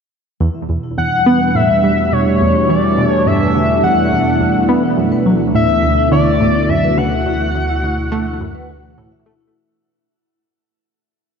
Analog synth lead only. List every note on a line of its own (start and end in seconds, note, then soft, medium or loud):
0.98 1.57 F#5 loud
1.55 2.14 E5 loud
2.13 2.69 C#5 medium
2.70 3.08 D5 loud
3.08 3.28 C#5 loud
3.27 3.83 E5 loud
3.84 4.65 F#5 medium
5.55 6.08 E5 medium
6.12 6.70 D5 medium
6.69 6.99 E5 loud
6.98 8.98 F#5 loud